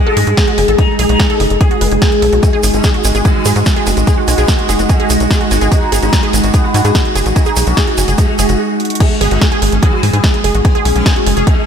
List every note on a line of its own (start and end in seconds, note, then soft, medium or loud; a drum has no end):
0.00 0.70 G#3 medium
0.00 8.59 G#3 medium
0.00 8.99 G#3 medium
0.00 8.59 D#4 medium
0.00 2.45 G#4 medium
0.00 8.59 D#5 medium
0.00 8.59 G#5 medium
0.07 0.13 A4 loud
0.17 0.24 G#2 loud
0.17 0.23 G#4 medium
0.17 open hi-hat loud
0.27 0.34 G#2 medium
0.27 closed hi-hat medium
0.37 0.47 G#4 loud
0.37 kick loud
0.37 snare loud
0.37 closed hi-hat medium
0.48 0.54 F#4 medium
0.48 closed hi-hat soft
0.58 0.65 F#1 loud
0.58 0.62 G#5 medium
0.58 open hi-hat loud
0.68 0.76 A1 medium
0.68 0.75 A4 loud
0.68 closed hi-hat medium
0.78 0.93 D#4 loud
0.78 0.85 G#4 medium
0.78 kick loud
0.78 closed hi-hat medium
0.99 1.06 B1 medium
0.99 1.09 G#4 loud
0.99 open hi-hat loud
1.09 1.17 B1 medium
1.09 1.24 D#4 medium
1.09 1.16 F#4 medium
1.09 closed hi-hat medium
1.20 1.23 G#5 medium
1.20 kick loud
1.20 snare loud
1.20 closed hi-hat medium
1.30 1.36 A4 loud
1.30 closed hi-hat soft
1.40 1.48 F#1 medium
1.40 1.47 G#4 medium
1.40 open hi-hat medium
1.50 1.58 F#1 medium
1.50 closed hi-hat medium
1.61 2.35 G#4 medium
1.61 1.70 G#4 loud
1.61 kick loud
1.61 closed hi-hat medium
1.71 1.77 F#4 medium
1.71 closed hi-hat soft
1.81 1.89 F#1 medium
1.81 1.88 B4 medium
1.81 open hi-hat loud
1.91 1.99 F#1 medium
1.91 1.98 G#4 medium
1.91 closed hi-hat soft
2.02 2.08 G#5 loud
2.02 kick loud
2.02 snare loud
2.02 closed hi-hat medium
2.12 closed hi-hat soft
2.22 2.30 B1 loud
2.22 2.29 A4 medium
2.22 open hi-hat medium
2.33 2.40 B1 medium
2.33 2.42 F#4 medium
2.33 closed hi-hat soft
2.43 2.57 G#3 loud
2.43 9.02 F#4 medium
2.43 2.47 G#5 medium
2.43 kick loud
2.43 closed hi-hat medium
2.43 shaker medium
2.53 2.60 G#4 loud
2.63 2.71 G#1 medium
2.63 2.70 G#4 medium
2.63 open hi-hat loud
2.63 shaker medium
2.74 2.81 G#1 medium
2.74 2.88 G#3 medium
2.74 closed hi-hat soft
2.74 shaker soft
2.83 2.94 G#4 loud
2.83 kick loud
2.83 snare loud
2.83 closed hi-hat medium
2.83 shaker soft
2.94 3.01 F#4 medium
2.94 closed hi-hat soft
3.04 3.12 G#1 loud
3.04 3.08 G#5 medium
3.04 open hi-hat medium
3.04 shaker loud
3.15 3.22 G#1 medium
3.15 3.21 G#4 loud
3.15 closed hi-hat medium
3.15 shaker soft
3.25 3.99 D#3 loud
3.25 3.32 G#4 medium
3.25 kick loud
3.25 closed hi-hat medium
3.25 shaker soft
3.45 3.53 G#2 medium
3.45 3.55 G#4 loud
3.45 open hi-hat loud
3.45 shaker loud
3.56 3.63 G#2 medium
3.56 3.62 F#4 medium
3.56 closed hi-hat soft
3.56 shaker soft
3.66 3.70 G#5 medium
3.66 kick loud
3.66 snare loud
3.66 closed hi-hat medium
3.66 shaker medium
3.76 3.83 G#4 loud
3.76 closed hi-hat soft
3.87 3.94 F#1 loud
3.87 3.93 G#4 medium
3.87 open hi-hat loud
3.87 shaker medium
3.97 4.04 A1 medium
3.97 closed hi-hat medium
3.97 shaker soft
4.07 4.22 B3 loud
4.07 4.17 G#4 loud
4.07 kick loud
4.07 closed hi-hat medium
4.07 shaker soft
4.18 4.24 F#4 medium
4.28 4.35 B1 medium
4.28 4.32 G#5 medium
4.28 open hi-hat loud
4.28 shaker medium
4.38 4.45 B1 medium
4.38 4.53 B3 medium
4.38 4.44 G#4 loud
4.38 closed hi-hat soft
4.38 shaker soft
4.48 kick loud
4.48 snare loud
4.48 closed hi-hat medium
4.48 shaker medium
4.59 closed hi-hat soft
4.69 4.76 F#1 medium
4.69 4.79 G#4 loud
4.69 open hi-hat medium
4.69 shaker medium
4.79 4.87 F#1 medium
4.79 4.86 F#4 medium
4.79 closed hi-hat medium
4.79 shaker soft
4.89 5.63 G#3 medium
4.89 4.93 G#5 medium
4.89 kick loud
4.89 closed hi-hat medium
4.89 shaker soft
5.00 5.06 G#4 loud
5.00 closed hi-hat soft
5.10 5.17 B1 loud
5.10 5.16 G#4 medium
5.10 open hi-hat loud
5.10 shaker medium
5.20 5.28 B1 medium
5.20 closed hi-hat medium
5.20 shaker soft
5.31 5.40 G#4 loud
5.31 kick loud
5.31 snare loud
5.31 closed hi-hat medium
5.31 shaker soft
5.41 5.47 F#4 medium
5.41 closed hi-hat soft
5.51 5.58 G#1 medium
5.51 5.55 G#5 medium
5.51 open hi-hat medium
5.51 shaker medium
5.61 5.69 G#1 medium
5.61 5.68 G#4 loud
5.61 closed hi-hat medium
5.61 shaker soft
5.72 5.86 D#4 medium
5.72 5.78 G#4 medium
5.72 kick loud
5.72 closed hi-hat medium
5.72 shaker soft
5.92 6.00 G#1 medium
5.92 6.02 G#4 loud
5.92 open hi-hat loud
5.92 shaker medium
6.02 6.10 G#1 medium
6.02 6.17 D#4 loud
6.02 6.09 F#4 medium
6.02 closed hi-hat medium
6.02 shaker soft
6.13 6.17 G#5 medium
6.13 kick loud
6.13 snare loud
6.13 closed hi-hat medium
6.13 shaker soft
6.23 6.29 G#4 loud
6.23 closed hi-hat soft
6.33 6.41 G#1 medium
6.33 6.40 G#4 medium
6.33 open hi-hat medium
6.33 shaker medium
6.44 6.51 G#1 medium
6.44 closed hi-hat medium
6.44 shaker soft
6.54 7.28 B3 medium
6.54 6.63 G#4 loud
6.54 kick loud
6.54 closed hi-hat medium
6.54 shaker medium
6.64 6.71 F#4 medium
6.74 6.82 G#2 medium
6.74 6.78 G#5 medium
6.74 open hi-hat loud
6.74 shaker medium
6.85 6.92 G#2 medium
6.85 6.91 G#4 loud
6.85 closed hi-hat medium
6.85 shaker soft
6.95 7.01 G#4 medium
6.95 kick loud
6.95 snare loud
6.95 closed hi-hat medium
6.95 shaker soft
7.05 closed hi-hat soft
7.15 7.23 F#1 loud
7.15 7.25 G#4 loud
7.15 open hi-hat medium
7.15 shaker medium
7.26 7.33 A1 medium
7.26 7.32 F#4 medium
7.26 closed hi-hat medium
7.26 shaker soft
7.36 7.50 D#4 loud
7.36 7.40 G#5 medium
7.36 kick loud
7.36 closed hi-hat medium
7.36 shaker medium
7.45 7.53 G#4 loud
7.45 closed hi-hat soft
7.45 shaker soft
7.56 7.64 B1 medium
7.56 7.63 G#4 medium
7.56 open hi-hat loud
7.56 shaker loud
7.67 7.74 B1 medium
7.67 7.81 C#4 loud
7.67 closed hi-hat medium
7.67 shaker soft
7.77 7.87 G#4 loud
7.77 kick loud
7.77 snare loud
7.77 closed hi-hat medium
7.77 shaker medium
7.87 7.94 F#4 medium
7.87 closed hi-hat soft
7.98 8.05 F#1 medium
7.98 8.02 G#5 medium
7.98 open hi-hat medium
7.98 shaker loud
8.08 8.15 F#1 medium
8.08 8.14 G#4 loud
8.08 closed hi-hat medium
8.08 shaker soft
8.18 8.59 G#3 loud
8.18 8.25 G#4 medium
8.18 kick loud
8.18 closed hi-hat medium
8.18 shaker medium
8.39 8.46 F#1 medium
8.39 8.45 G#4 loud
8.39 open hi-hat loud
8.39 shaker medium
8.49 8.56 F#1 medium
8.49 8.55 F#4 medium
8.49 closed hi-hat medium
8.49 shaker soft
8.80 closed hi-hat medium
8.85 closed hi-hat medium
8.90 closed hi-hat medium
8.95 closed hi-hat medium
9.00 11.66 G#3 medium
9.00 9.15 G#3 loud
9.00 11.66 G#4 medium
9.00 9.07 G#4 medium
9.00 kick loud
9.00 closed hi-hat medium
9.00 crash loud
9.21 9.28 G#1 medium
9.21 9.38 B3 medium
9.21 9.31 G#4 loud
9.21 open hi-hat loud
9.31 9.39 G#1 medium
9.31 9.46 G#3 medium
9.31 9.38 F#4 medium
9.31 closed hi-hat medium
9.40 11.66 D#4 medium
9.40 9.45 G#5 medium
9.40 kick loud
9.40 snare loud
9.40 closed hi-hat medium
9.52 9.58 G#4 loud
9.52 closed hi-hat soft
9.62 9.69 G#1 medium
9.62 9.68 G#4 medium
9.62 open hi-hat loud
9.72 9.80 G#1 medium
9.72 9.79 C#4 medium
9.72 closed hi-hat medium
9.83 10.57 D#3 loud
9.83 9.89 C#4 medium
9.83 9.92 G#4 loud
9.83 kick loud
9.83 closed hi-hat medium
9.93 9.99 F#4 medium
10.03 10.11 G#2 medium
10.03 10.07 G#5 medium
10.03 open hi-hat loud
10.13 10.21 G#2 medium
10.13 10.20 G#4 loud
10.13 closed hi-hat medium
10.20 10.30 G#4 medium
10.20 11.66 G#5 medium
10.20 kick loud
10.20 snare loud
10.20 closed hi-hat medium
10.34 closed hi-hat soft
10.44 10.52 F#1 loud
10.44 10.54 G#4 loud
10.44 open hi-hat loud
10.55 10.62 A1 medium
10.55 10.61 F#4 medium
10.55 closed hi-hat medium
10.65 10.79 B3 loud
10.65 10.69 G#5 medium
10.65 kick loud
10.65 closed hi-hat medium
10.75 10.81 G#4 loud
10.75 closed hi-hat soft
10.85 10.93 B1 medium
10.85 11.43 C#4 loud
10.85 10.92 G#4 medium
10.85 open hi-hat loud
10.96 11.03 B1 medium
10.96 11.10 B3 medium
10.96 closed hi-hat medium
11.06 11.16 G#4 medium
11.06 kick loud
11.06 snare loud
11.06 closed hi-hat medium
11.16 11.23 F#4 medium
11.16 closed hi-hat soft
11.26 11.34 F#1 loud
11.26 11.30 G#5 medium
11.26 open hi-hat loud
11.37 11.44 F#1 medium
11.37 11.43 G#4 loud
11.37 closed hi-hat medium
11.47 11.66 G#3 loud
11.47 11.53 G#4 medium
11.47 kick loud
11.47 closed hi-hat medium